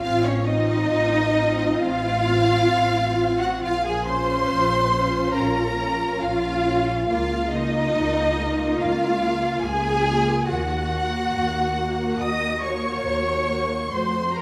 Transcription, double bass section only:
0, 0, Header, 1, 2, 480
1, 0, Start_track
1, 0, Key_signature, -5, "minor"
1, 0, Tempo, 860832
1, 20, Time_signature, 4, 2, 24, 8
1, 500, Tempo, 910470
1, 1940, Tempo, 868307
1, 4340, Tempo, 839161
1, 5780, Tempo, 859599
1, 7976, End_track
2, 0, Start_track
2, 0, Title_t, "Double bass section"
2, 0, Program_c, 0, 48
2, 24, Note_on_c, 0, 33, 94
2, 445, Note_off_c, 0, 33, 0
2, 504, Note_on_c, 0, 33, 85
2, 923, Note_off_c, 0, 33, 0
2, 983, Note_on_c, 0, 33, 91
2, 1405, Note_off_c, 0, 33, 0
2, 1460, Note_on_c, 0, 33, 78
2, 1884, Note_off_c, 0, 33, 0
2, 1944, Note_on_c, 0, 34, 88
2, 2365, Note_off_c, 0, 34, 0
2, 2421, Note_on_c, 0, 34, 90
2, 2838, Note_off_c, 0, 34, 0
2, 2895, Note_on_c, 0, 34, 82
2, 3317, Note_off_c, 0, 34, 0
2, 3377, Note_on_c, 0, 34, 75
2, 3796, Note_off_c, 0, 34, 0
2, 3855, Note_on_c, 0, 37, 84
2, 4285, Note_off_c, 0, 37, 0
2, 4343, Note_on_c, 0, 37, 89
2, 4768, Note_off_c, 0, 37, 0
2, 4830, Note_on_c, 0, 37, 85
2, 5240, Note_off_c, 0, 37, 0
2, 5296, Note_on_c, 0, 37, 78
2, 5723, Note_off_c, 0, 37, 0
2, 5781, Note_on_c, 0, 39, 85
2, 6205, Note_off_c, 0, 39, 0
2, 6261, Note_on_c, 0, 39, 77
2, 6684, Note_off_c, 0, 39, 0
2, 6738, Note_on_c, 0, 39, 76
2, 7152, Note_off_c, 0, 39, 0
2, 7210, Note_on_c, 0, 39, 75
2, 7638, Note_off_c, 0, 39, 0
2, 7695, Note_on_c, 0, 41, 76
2, 7976, Note_off_c, 0, 41, 0
2, 7976, End_track
0, 0, End_of_file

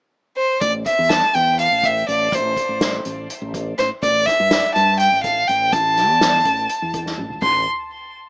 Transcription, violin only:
0, 0, Header, 1, 2, 480
1, 0, Start_track
1, 0, Key_signature, 0, "minor"
1, 0, Tempo, 486224
1, 613, Time_signature, 7, 3, 24, 8
1, 8186, End_track
2, 0, Start_track
2, 0, Title_t, "Violin"
2, 0, Program_c, 0, 40
2, 364, Note_on_c, 0, 72, 68
2, 592, Note_off_c, 0, 72, 0
2, 602, Note_on_c, 0, 74, 79
2, 712, Note_off_c, 0, 74, 0
2, 850, Note_on_c, 0, 76, 78
2, 1084, Note_on_c, 0, 81, 95
2, 1099, Note_off_c, 0, 76, 0
2, 1335, Note_on_c, 0, 79, 84
2, 1350, Note_off_c, 0, 81, 0
2, 1572, Note_off_c, 0, 79, 0
2, 1578, Note_on_c, 0, 77, 85
2, 1830, Note_on_c, 0, 76, 74
2, 1845, Note_off_c, 0, 77, 0
2, 2060, Note_off_c, 0, 76, 0
2, 2066, Note_on_c, 0, 74, 72
2, 2316, Note_on_c, 0, 72, 69
2, 2330, Note_off_c, 0, 74, 0
2, 2847, Note_off_c, 0, 72, 0
2, 3732, Note_on_c, 0, 72, 75
2, 3841, Note_off_c, 0, 72, 0
2, 3979, Note_on_c, 0, 74, 86
2, 4203, Note_on_c, 0, 76, 89
2, 4217, Note_off_c, 0, 74, 0
2, 4680, Note_off_c, 0, 76, 0
2, 4686, Note_on_c, 0, 81, 85
2, 4914, Note_off_c, 0, 81, 0
2, 4930, Note_on_c, 0, 79, 81
2, 5156, Note_off_c, 0, 79, 0
2, 5168, Note_on_c, 0, 77, 86
2, 5406, Note_on_c, 0, 79, 78
2, 5421, Note_off_c, 0, 77, 0
2, 5647, Note_on_c, 0, 81, 91
2, 5662, Note_off_c, 0, 79, 0
2, 6849, Note_off_c, 0, 81, 0
2, 7331, Note_on_c, 0, 84, 79
2, 7554, Note_off_c, 0, 84, 0
2, 8186, End_track
0, 0, End_of_file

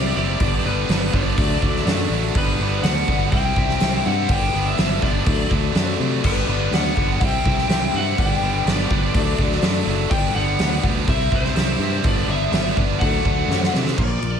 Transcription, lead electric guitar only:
0, 0, Header, 1, 2, 480
1, 0, Start_track
1, 0, Key_signature, 1, "major"
1, 0, Tempo, 485437
1, 398, Time_signature, 4, 2, 24, 8
1, 14238, End_track
2, 0, Start_track
2, 0, Title_t, "Lead electric guitar"
2, 0, Program_c, 0, 29
2, 0, Note_on_c, 0, 74, 111
2, 153, Note_off_c, 0, 74, 0
2, 165, Note_on_c, 0, 74, 103
2, 649, Note_on_c, 0, 71, 99
2, 658, Note_off_c, 0, 74, 0
2, 1142, Note_off_c, 0, 71, 0
2, 1145, Note_on_c, 0, 74, 96
2, 2058, Note_off_c, 0, 74, 0
2, 2349, Note_on_c, 0, 71, 100
2, 2787, Note_off_c, 0, 71, 0
2, 2799, Note_on_c, 0, 78, 94
2, 3251, Note_off_c, 0, 78, 0
2, 3273, Note_on_c, 0, 79, 120
2, 4009, Note_off_c, 0, 79, 0
2, 4013, Note_on_c, 0, 78, 98
2, 4260, Note_off_c, 0, 78, 0
2, 4264, Note_on_c, 0, 79, 107
2, 4593, Note_off_c, 0, 79, 0
2, 4616, Note_on_c, 0, 76, 99
2, 4973, Note_off_c, 0, 76, 0
2, 4977, Note_on_c, 0, 74, 96
2, 5421, Note_off_c, 0, 74, 0
2, 6179, Note_on_c, 0, 71, 100
2, 6666, Note_on_c, 0, 78, 96
2, 6668, Note_off_c, 0, 71, 0
2, 7104, Note_off_c, 0, 78, 0
2, 7168, Note_on_c, 0, 79, 125
2, 7871, Note_off_c, 0, 79, 0
2, 7875, Note_on_c, 0, 78, 107
2, 8085, Note_off_c, 0, 78, 0
2, 8103, Note_on_c, 0, 79, 114
2, 8541, Note_off_c, 0, 79, 0
2, 8584, Note_on_c, 0, 74, 87
2, 9732, Note_off_c, 0, 74, 0
2, 9992, Note_on_c, 0, 79, 122
2, 10222, Note_off_c, 0, 79, 0
2, 10226, Note_on_c, 0, 78, 110
2, 10678, Note_off_c, 0, 78, 0
2, 10970, Note_on_c, 0, 76, 123
2, 11187, Note_off_c, 0, 76, 0
2, 11224, Note_on_c, 0, 72, 107
2, 11943, Note_on_c, 0, 74, 103
2, 11950, Note_off_c, 0, 72, 0
2, 12169, Note_off_c, 0, 74, 0
2, 12173, Note_on_c, 0, 76, 92
2, 12610, Note_off_c, 0, 76, 0
2, 12852, Note_on_c, 0, 78, 112
2, 13543, Note_off_c, 0, 78, 0
2, 13831, Note_on_c, 0, 74, 96
2, 14238, Note_off_c, 0, 74, 0
2, 14238, End_track
0, 0, End_of_file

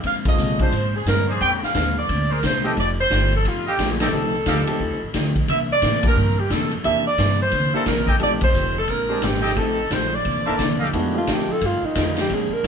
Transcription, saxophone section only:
0, 0, Header, 1, 2, 480
1, 0, Start_track
1, 0, Tempo, 340522
1, 49, Time_signature, 4, 2, 24, 8
1, 17860, End_track
2, 0, Start_track
2, 0, Title_t, "Saxophone section"
2, 0, Program_c, 0, 65
2, 99, Note_on_c, 0, 77, 78
2, 223, Note_off_c, 0, 77, 0
2, 408, Note_on_c, 0, 75, 88
2, 828, Note_off_c, 0, 75, 0
2, 880, Note_on_c, 0, 72, 81
2, 1336, Note_off_c, 0, 72, 0
2, 1356, Note_on_c, 0, 68, 74
2, 1501, Note_off_c, 0, 68, 0
2, 1531, Note_on_c, 0, 70, 84
2, 1792, Note_off_c, 0, 70, 0
2, 2001, Note_on_c, 0, 79, 92
2, 2129, Note_off_c, 0, 79, 0
2, 2326, Note_on_c, 0, 77, 86
2, 2747, Note_off_c, 0, 77, 0
2, 2804, Note_on_c, 0, 74, 89
2, 3258, Note_off_c, 0, 74, 0
2, 3273, Note_on_c, 0, 70, 80
2, 3431, Note_off_c, 0, 70, 0
2, 3462, Note_on_c, 0, 72, 80
2, 3718, Note_off_c, 0, 72, 0
2, 3948, Note_on_c, 0, 74, 86
2, 4071, Note_off_c, 0, 74, 0
2, 4241, Note_on_c, 0, 72, 87
2, 4664, Note_off_c, 0, 72, 0
2, 4729, Note_on_c, 0, 69, 82
2, 4879, Note_off_c, 0, 69, 0
2, 4905, Note_on_c, 0, 65, 75
2, 5179, Note_off_c, 0, 65, 0
2, 5195, Note_on_c, 0, 67, 82
2, 5506, Note_off_c, 0, 67, 0
2, 5528, Note_on_c, 0, 68, 58
2, 5642, Note_off_c, 0, 68, 0
2, 5653, Note_on_c, 0, 69, 77
2, 7262, Note_off_c, 0, 69, 0
2, 7754, Note_on_c, 0, 76, 85
2, 7884, Note_off_c, 0, 76, 0
2, 8073, Note_on_c, 0, 74, 90
2, 8501, Note_off_c, 0, 74, 0
2, 8558, Note_on_c, 0, 70, 82
2, 8984, Note_off_c, 0, 70, 0
2, 9022, Note_on_c, 0, 67, 73
2, 9187, Note_off_c, 0, 67, 0
2, 9187, Note_on_c, 0, 69, 77
2, 9481, Note_off_c, 0, 69, 0
2, 9656, Note_on_c, 0, 76, 86
2, 9935, Note_off_c, 0, 76, 0
2, 9973, Note_on_c, 0, 74, 92
2, 10411, Note_off_c, 0, 74, 0
2, 10464, Note_on_c, 0, 72, 84
2, 10929, Note_off_c, 0, 72, 0
2, 10933, Note_on_c, 0, 69, 75
2, 11091, Note_off_c, 0, 69, 0
2, 11097, Note_on_c, 0, 70, 80
2, 11396, Note_off_c, 0, 70, 0
2, 11607, Note_on_c, 0, 74, 88
2, 11735, Note_off_c, 0, 74, 0
2, 11899, Note_on_c, 0, 72, 83
2, 12335, Note_off_c, 0, 72, 0
2, 12383, Note_on_c, 0, 69, 76
2, 12537, Note_off_c, 0, 69, 0
2, 12546, Note_on_c, 0, 70, 79
2, 13021, Note_off_c, 0, 70, 0
2, 13028, Note_on_c, 0, 67, 71
2, 13502, Note_off_c, 0, 67, 0
2, 13512, Note_on_c, 0, 69, 75
2, 13984, Note_off_c, 0, 69, 0
2, 13998, Note_on_c, 0, 72, 78
2, 14288, Note_off_c, 0, 72, 0
2, 14306, Note_on_c, 0, 74, 76
2, 15251, Note_off_c, 0, 74, 0
2, 17860, End_track
0, 0, End_of_file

